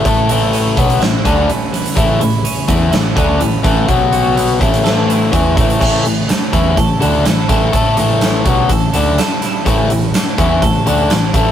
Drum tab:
CC |----------------|----------------|----------------|x---------------|
HH |x-x-x-xxx-x-x-xx|x-x-x-x-x-x-x-x-|x-x-x-xxx-x-x-xx|--x-x-x-x-x-x-x-|
SD |--------o-------|--------o-------|--------o-------|----o-------o---|
BD |o-----o---o-----|o-----o---o---o-|o-----o-----o-o-|o-----o-o-----o-|

CC |----------------|----------------|
HH |x-x-x-x-x-x-x-x-|x-x-x-x-x-x-x-x-|
SD |----o-------o-o-|----o-------o---|
BD |o-----o-o-------|o-----o-o-----o-|